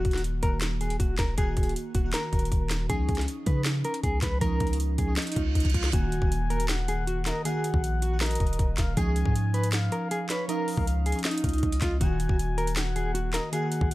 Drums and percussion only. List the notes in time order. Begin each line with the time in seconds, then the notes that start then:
0.05 kick, closed hi-hat
0.11 snare, closed hi-hat
0.18 closed hi-hat
0.24 closed hi-hat
0.43 kick, closed hi-hat
0.61 snare, clap, closed hi-hat
0.81 closed hi-hat
0.90 closed hi-hat
1.00 kick, closed hi-hat
1.18 kick, snare, clap, closed hi-hat
1.38 kick, closed hi-hat
1.57 kick, closed hi-hat
1.63 closed hi-hat
1.69 closed hi-hat
1.76 closed hi-hat
1.95 kick, closed hi-hat
2.13 snare, clap, closed hi-hat
2.33 kick, closed hi-hat
2.39 closed hi-hat
2.45 closed hi-hat
2.52 kick, closed hi-hat
2.70 snare, clap, closed hi-hat
2.90 kick, closed hi-hat
3.09 kick, closed hi-hat
3.15 snare, closed hi-hat
3.21 closed hi-hat
3.28 closed hi-hat
3.46 kick, closed hi-hat
3.65 snare, clap, closed hi-hat
3.84 closed hi-hat
3.94 closed hi-hat
4.04 kick, closed hi-hat
4.22 kick, snare, clap, closed hi-hat
4.41 kick, closed hi-hat
4.60 kick, closed hi-hat, open hi-hat
4.67 closed hi-hat
4.73 closed hi-hat
4.80 closed hi-hat
4.98 kick, closed hi-hat
5.17 snare, clap, closed hi-hat
5.22 closed hi-hat
5.27 closed hi-hat
5.32 closed hi-hat
5.36 kick, closed hi-hat
5.55 kick, closed hi-hat
5.60 closed hi-hat
5.65 kick, closed hi-hat
5.70 closed hi-hat
5.74 kick, closed hi-hat
5.84 snare
5.93 kick, closed hi-hat
6.12 closed hi-hat
6.22 kick
6.32 closed hi-hat
6.50 closed hi-hat
6.60 closed hi-hat
6.69 snare, clap, closed hi-hat
6.88 closed hi-hat
7.07 closed hi-hat
7.26 snare, clap, closed hi-hat
7.45 closed hi-hat
7.64 closed hi-hat
7.74 kick
7.84 closed hi-hat
8.02 closed hi-hat
8.21 snare, clap, closed hi-hat
8.26 closed hi-hat
8.31 closed hi-hat
8.35 closed hi-hat
8.40 kick, closed hi-hat
8.47 closed hi-hat
8.53 closed hi-hat
8.59 kick, closed hi-hat
8.77 kick, snare, clap, closed hi-hat
8.97 kick, closed hi-hat
9.16 closed hi-hat
9.26 kick
9.36 closed hi-hat
9.54 closed hi-hat
9.64 closed hi-hat
9.72 snare, clap, closed hi-hat
9.92 closed hi-hat
10.11 closed hi-hat
10.29 snare, clap, closed hi-hat
10.49 closed hi-hat
10.68 open hi-hat
10.77 kick
10.87 closed hi-hat
11.06 closed hi-hat
11.12 closed hi-hat
11.19 closed hi-hat
11.24 snare, clap, closed hi-hat
11.31 closed hi-hat
11.38 closed hi-hat
11.44 kick, closed hi-hat
11.49 closed hi-hat
11.53 closed hi-hat
11.58 closed hi-hat
11.63 kick, closed hi-hat
11.72 closed hi-hat
11.81 kick, snare, clap, closed hi-hat
12.01 kick, closed hi-hat
12.20 closed hi-hat
12.29 kick
12.39 closed hi-hat
12.58 closed hi-hat
12.67 closed hi-hat
12.76 snare, clap, closed hi-hat
12.96 closed hi-hat
13.15 closed hi-hat
13.33 snare, clap, closed hi-hat
13.53 closed hi-hat
13.72 closed hi-hat
13.81 kick